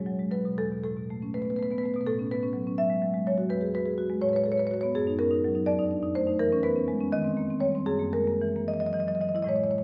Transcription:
0.00 0.52 E2 soft
0.00 0.30 C#5 medium
0.06 0.26 F#3 soft
0.19 0.31 G#3 soft
0.31 0.51 F#3 soft
0.31 0.55 B4 medium
0.45 0.57 B2 soft
0.58 2.03 E2 soft
0.58 0.81 A4 medium
0.72 0.90 B2 soft
0.84 0.95 A2 soft
0.84 1.31 A4 medium
0.97 1.16 B2 soft
1.10 1.29 A3 soft
1.22 1.41 C#4 soft
1.34 1.53 A3 soft
1.34 1.42 B4 medium
1.42 1.57 B3 soft
1.42 1.50 B4 soft
1.50 1.56 B4 medium
1.56 1.77 A3 soft
1.56 1.63 B4 soft
1.63 1.70 B4 medium
1.70 1.82 B3 soft
1.70 1.78 B4 soft
1.78 1.85 B4 medium
1.83 2.02 A3 soft
1.83 1.94 B4 medium
1.94 2.07 B2 soft
1.94 2.01 B4 soft
2.01 2.04 B4 soft
2.07 3.47 A2 soft
2.07 2.30 A4 medium
2.19 2.38 C#4 soft
2.31 2.43 B3 soft
2.31 2.77 B4 medium
2.43 2.62 C#4 soft
2.53 2.73 F#3 soft
2.67 2.86 C#4 soft
2.78 2.97 F#3 soft
2.78 3.24 E5 medium
2.90 3.02 G#3 soft
3.02 3.21 F#3 soft
3.14 3.26 G#3 soft
3.27 3.46 F#3 soft
3.27 3.50 C#5 medium
3.38 3.50 F#4 soft
3.49 4.20 E2 soft
3.49 3.73 B4 medium
3.61 3.81 G#4 soft
3.74 3.86 F#4 soft
3.74 4.21 B4 medium
3.86 4.05 G#4 soft
3.98 4.17 F#4 soft
4.09 4.22 G#3 soft
4.22 4.92 A2 medium
4.22 4.29 C#5 medium
4.29 4.36 C#5 medium
4.33 4.53 B4 soft
4.33 4.44 C#5 medium
4.44 4.58 A4 soft
4.44 4.52 C#5 medium
4.52 4.59 C#5 medium
4.58 4.77 B4 soft
4.58 4.67 C#5 medium
4.67 4.74 C#5 medium
4.71 4.90 F#4 soft
4.71 4.81 C#5 medium
4.81 4.95 B3 soft
4.81 4.91 C#5 medium
4.95 5.64 F#2 medium
4.95 5.17 G#4 medium
5.07 5.26 D#4 soft
5.19 5.30 C#4 soft
5.19 5.64 A#4 medium
5.31 5.50 D#4 soft
5.44 5.62 F#3 soft
5.55 5.67 D#4 soft
5.66 6.37 F2 medium
5.66 6.13 D5 medium
5.79 5.98 D#4 soft
5.91 6.03 D4 soft
6.03 6.22 D#4 soft
6.15 6.34 A3 soft
6.15 6.38 C5 medium
6.27 6.39 D#4 soft
6.39 7.10 E3 medium
6.39 6.62 A#4 medium
6.52 6.71 C#4 soft
6.63 6.76 B3 soft
6.63 7.10 B4 medium
6.76 6.95 C#4 soft
6.88 7.07 G#3 soft
7.01 7.12 C#4 soft
7.12 7.84 D#3 medium
7.12 7.59 D#5 medium
7.24 7.44 C4 soft
7.37 7.49 A#3 soft
7.50 7.69 C4 soft
7.60 7.81 G3 soft
7.60 7.85 C#5 medium
7.75 7.87 C4 soft
7.86 9.44 F#2 medium
7.86 8.11 G#4 medium
7.99 8.20 A#3 soft
8.13 8.26 G#3 soft
8.13 8.65 A#4 medium
8.27 8.48 A#3 soft
8.41 8.62 E3 soft
8.56 8.76 A#3 soft
8.68 8.89 E3 soft
8.68 8.74 D#5 medium
8.74 8.80 D#5 medium
8.80 8.94 F#3 soft
8.80 8.86 D#5 medium
8.86 8.93 D#5 medium
8.93 9.16 E3 soft
8.93 9.00 D#5 medium
9.00 9.08 D#5 medium
9.07 9.21 F#3 soft
9.07 9.15 D#5 medium
9.15 9.21 D#5 medium
9.21 9.43 E3 soft
9.21 9.29 D#5 medium
9.29 9.36 D#5 medium
9.35 9.48 E4 soft
9.35 9.42 D#5 medium
9.42 9.84 A2 soft
9.42 9.84 E3 soft
9.42 9.46 D#5 medium
9.47 9.84 G#3 soft
9.47 9.56 C#5 medium
9.56 9.64 C#5 medium
9.64 9.71 C#5 medium
9.71 9.78 C#5 medium
9.78 9.84 C#5 medium

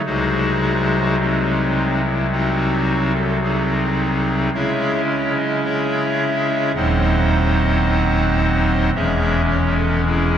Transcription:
0.06 4.49 C2 medium
0.06 4.49 C3 medium
0.06 4.49 F#3 soft
0.06 1.18 G#3 soft
0.06 1.18 D#4 soft
0.06 1.15 F#4 medium
0.06 1.15 G#4 medium
0.06 1.15 C5 medium
1.20 2.01 G#3 medium
1.20 2.01 C4 medium
1.20 2.01 D#4 medium
2.03 2.27 E4 medium
2.32 3.12 C4 medium
2.32 3.12 D#4 medium
2.32 3.12 F#4 medium
3.14 3.38 A4 medium
3.43 4.50 C4 medium
3.43 4.50 D#4 medium
3.43 4.50 G#4 medium
4.54 6.71 C#3 medium
4.54 6.71 G#3 soft
4.54 6.71 C#4 soft
4.54 6.71 E4 soft
4.54 5.01 G#4 medium
4.54 5.01 C#5 medium
4.54 5.01 E5 medium
5.09 5.33 C#5 medium
5.37 5.61 D#5 medium
5.65 6.72 G#4 medium
5.65 6.72 C#5 medium
5.65 6.72 E5 medium
6.75 8.90 D#1 medium
6.75 8.90 D#2 medium
6.75 8.90 F#3 soft
6.75 8.90 C4 soft
6.75 8.90 D#4 soft
6.75 8.91 C5 medium
6.75 8.90 D#5 medium
6.75 8.90 F#5 loud
8.95 10.38 E1 medium
8.95 10.38 E2 medium
8.95 10.38 E3 soft
8.95 10.38 G#3 medium
8.95 10.05 C#4 medium
8.95 9.42 G#4 medium
8.95 9.41 C#5 medium
8.95 9.42 E5 loud
9.50 9.73 C#5 loud
9.78 10.01 A4 medium
10.06 10.38 C#4 medium
10.06 10.38 E4 medium
10.06 10.38 G#4 medium

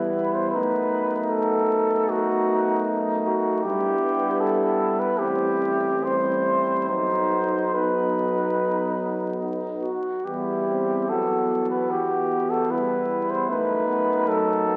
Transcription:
0.00 0.50 E2 soft
0.00 0.55 G3 soft
0.00 3.48 B3 soft
0.00 0.55 E4 soft
0.00 0.36 B4 soft
0.34 0.50 C5 soft
0.51 3.62 F#2 soft
0.51 3.64 A3 soft
0.51 3.65 D#4 soft
0.51 1.13 B4 soft
1.30 2.11 A4 medium
2.10 2.89 F#4 medium
3.27 3.64 F#4 medium
3.63 5.15 G3 soft
3.63 5.15 B3 soft
3.63 5.15 E4 soft
3.63 4.42 G4 medium
3.67 5.03 G2 soft
4.40 5.01 A4 medium
4.99 5.20 B4 medium
5.18 6.86 A1 soft
5.18 5.90 G3 soft
5.18 6.03 C4 soft
5.18 5.89 E4 soft
5.18 6.06 G4 medium
6.04 6.88 G3 soft
6.04 6.87 C4 soft
6.04 6.87 E4 soft
6.04 6.88 C5 medium
6.87 9.89 B1 soft
6.87 7.73 F#3 soft
6.87 7.72 B3 soft
6.87 7.72 D#4 soft
6.87 7.76 C5 medium
7.73 9.88 F#3 soft
7.73 9.88 B3 soft
7.73 9.88 D#4 soft
7.73 9.42 B4 soft
9.82 10.26 F#4 soft
10.24 13.44 E2 soft
10.24 11.05 G3 soft
10.24 10.64 B3 soft
10.24 11.11 E4 soft
10.24 11.11 G4 soft
10.67 11.08 C4 soft
11.08 11.87 F#3 soft
11.08 13.48 B3 soft
11.08 12.73 F#4 soft
11.08 11.69 A4 medium
11.70 11.92 B4 soft
11.89 12.72 E3 soft
11.89 12.51 G4 medium
12.50 12.72 A4 soft
12.70 13.51 G3 soft
12.70 13.49 E4 soft
12.70 13.32 B4 medium
13.30 13.49 C5 medium
13.48 14.77 F#2 soft
13.48 14.25 A3 soft
13.48 13.88 A3 soft
13.48 14.77 D#4 soft
13.48 14.29 B4 medium
13.87 14.29 B3 soft
14.26 14.77 F#3 soft
14.26 14.66 A3 soft
14.26 14.77 A4 medium
14.66 14.77 B3 soft

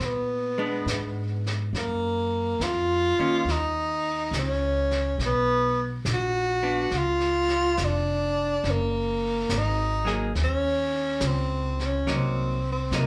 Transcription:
0.00 0.84 A#2 medium
0.00 brush sweep soft
0.00 snare soft
0.06 1.48 B3 medium
0.58 1.68 G#3 medium
0.58 1.68 B3 medium
0.58 1.68 D4 medium
0.86 1.70 G#2 medium
0.86 snare soft
0.86 hi-hat pedal soft
1.46 snare soft
1.73 2.57 F#2 medium
1.73 brush sweep soft
1.73 snare soft
1.77 2.64 A#3 medium
2.60 3.14 F2 medium
2.60 3.52 F4 loud
2.60 snare soft
2.60 hi-hat pedal soft
3.19 3.44 D#3 medium
3.19 3.44 A#3 medium
3.19 3.45 C#4 medium
3.19 muted upright bass stroke soft
3.45 4.29 D#2 medium
3.45 brush sweep soft
3.45 snare soft
3.51 4.35 D#4 medium
4.31 5.15 C#2 medium
4.31 snare soft
4.31 hi-hat pedal soft
4.38 5.18 C#4 medium
4.91 snare soft
5.18 6.02 B1 medium
5.18 brush sweep soft
5.18 snare soft
5.26 5.87 B3 medium
6.05 6.88 A#1 medium
6.05 snare soft
6.05 hi-hat pedal soft
6.13 6.99 F#4 loud
6.63 6.88 B3 medium
6.63 6.88 D4 medium
6.91 7.74 C#2 medium
6.91 brush sweep soft
6.91 snare soft
6.98 7.86 F4 loud
7.20 snare soft
7.49 snare soft
7.77 8.61 F1 medium
7.77 snare soft
7.77 hi-hat pedal medium
7.84 8.72 D4 medium
8.64 9.46 F#1 medium
8.64 brush sweep soft
8.64 snare soft
8.71 9.60 A#3 medium
9.49 10.32 G#1 medium
9.49 snare soft
9.49 hi-hat pedal medium
9.58 10.21 D#4 medium
10.05 10.31 F#3 medium
10.05 10.32 A#3 medium
10.05 10.31 D#4 medium
10.05 10.32 G#4 medium
10.05 snare soft
10.35 11.18 D#2 medium
10.35 brush sweep soft
10.35 snare soft
10.44 11.29 C#4 medium
11.20 12.04 C#2 medium
11.20 snare medium
11.20 hi-hat pedal medium
11.27 11.88 C4 medium
11.80 snare soft
11.86 12.18 C#4 medium
12.07 12.90 C2 medium
12.07 12.59 F#3 soft
12.07 12.59 A#3 soft
12.07 12.59 D#4 soft
12.07 brush sweep soft
12.07 snare soft
12.17 12.69 C4 medium
12.72 13.02 C4 medium
12.91 13.07 C3 medium
12.91 13.07 F#3 soft
12.91 13.07 A#3 soft
12.91 13.07 D#4 medium
12.91 snare soft
12.91 hi-hat pedal medium
13.01 13.07 A#3 medium

